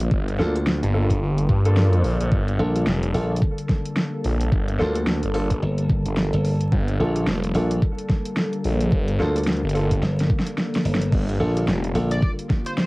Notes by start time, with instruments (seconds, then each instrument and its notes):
Already playing: ambient pad D3 G3 A#3 F4
0.00 closed hi-hat
0.11 detuned saw bass G1, kick
0.28 closed hi-hat
0.39 slap bass D2, grand piano A#3 D4 F4 A4, snare
0.56 cross-stick, closed hi-hat
0.67 snare
0.83 detuned saw bass G1, closed hi-hat
0.94 grand piano A#3 D4 F4 A4
1.10 kick, closed hi-hat
1.22 detuned saw bass G1
1.38 closed hi-hat
1.49 detuned saw bass G2, kick
1.65 grand piano A#3 D4 F4 A4, closed hi-hat
1.77 snare
1.93 closed hi-hat
2.04 detuned saw bass A#1, cross-stick, open hi-hat
2.20 detuned saw bass A#1, closed hi-hat
2.32 detuned saw bass G1, ambient pad A4, kick
2.48 closed hi-hat
2.59 slap bass A#1, grand piano A#3 D4 F4 A4
2.76 cross-stick, closed hi-hat
2.86 detuned saw bass F1, snare
3.03 closed hi-hat
3.14 slap bass A#1, grand piano A#3 D4 F4 A4, open hi-hat
3.36 closed hi-hat
3.42 kick
3.58 closed hi-hat
3.69 kick, snare
3.85 closed hi-hat
3.96 snare
4.24 detuned saw bass A#1, closed hi-hat, open hi-hat
4.40 closed hi-hat
4.52 detuned saw bass G1, kick
4.68 closed hi-hat
4.79 slap bass D2, grand piano A#3 D4 F4 A4, snare
4.95 cross-stick, closed hi-hat
5.07 snare
5.23 detuned saw bass G1, closed hi-hat
5.34 grand piano A#3 D4 F4 A4, open hi-hat
5.50 kick, closed hi-hat
5.62 slap bass G1
5.78 closed hi-hat
5.89 kick
6.05 detuned saw bass G1, closed hi-hat
6.17 snare
6.33 slap bass G1, closed hi-hat
6.44 cross-stick, open hi-hat
6.61 closed hi-hat
6.72 detuned saw bass G1, kick
6.88 closed hi-hat
7.00 slap bass A#1, grand piano A#3 D4 F4 A4
7.16 cross-stick, closed hi-hat
7.27 detuned saw bass F1, snare
7.44 closed hi-hat
7.54 slap bass A#1, grand piano A#3 D4 F4 A4, open hi-hat
7.71 closed hi-hat
7.82 kick
7.98 closed hi-hat
8.09 kick, snare
8.26 closed hi-hat
8.37 snare
8.53 closed hi-hat
8.64 detuned saw bass A#1, open hi-hat
8.81 closed hi-hat
8.92 detuned saw bass G1, kick
9.08 closed hi-hat
9.20 slap bass D2, grand piano A#3 D4 F4 A4, cross-stick, snare
9.36 cross-stick, closed hi-hat
9.38 closed hi-hat
9.44 snare, closed hi-hat
9.47 closed hi-hat
9.53 closed hi-hat
9.57 closed hi-hat
9.63 detuned saw bass G1
9.69 closed hi-hat
9.74 grand piano A#3 D4 F4 A4, open hi-hat
9.91 kick, closed hi-hat
10.02 slap bass G1, snare
10.19 snare, closed hi-hat
10.30 kick
10.39 snare
10.47 closed hi-hat
10.58 snare
10.74 snare, closed hi-hat
10.85 slap bass G1, open hi-hat
10.95 snare
11.02 closed hi-hat
11.12 detuned saw bass G1, ambient pad F4, kick, crash
11.29 closed hi-hat
11.40 slap bass A#1, grand piano A#3 D4 F4 A4
11.57 cross-stick, closed hi-hat
11.59 cross-stick
11.64 detuned saw bass F1, cross-stick
11.68 cross-stick, snare
11.73 cross-stick
11.77 cross-stick
11.84 closed hi-hat
11.95 slap bass A#1, grand piano A#3 D4 F4 A4, open hi-hat
12.11 analog synth lead D5, closed hi-hat
12.23 kick
12.39 closed hi-hat
12.50 kick, snare
12.66 analog synth lead C5, closed hi-hat
12.78 analog synth lead C5, snare